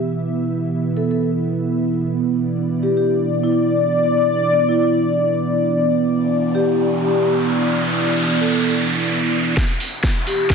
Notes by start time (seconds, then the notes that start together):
Already playing: B3 E4 E5
0.97 A4
1.11 A4
2.13 D5
2.83 G4
2.97 G4
3.43 E4
3.52 E4
4.69 E4
4.83 E4
5.85 riser
6.55 G4
6.69 G4
7.02 G4
7.16 G4
8.41 A4
8.55 A4
9.57 B3 E4 E5, kick, snare, riser
9.80 open hi-hat
10.04 kick, snare
10.27 G4, open hi-hat
10.41 G4
10.50 kick, snare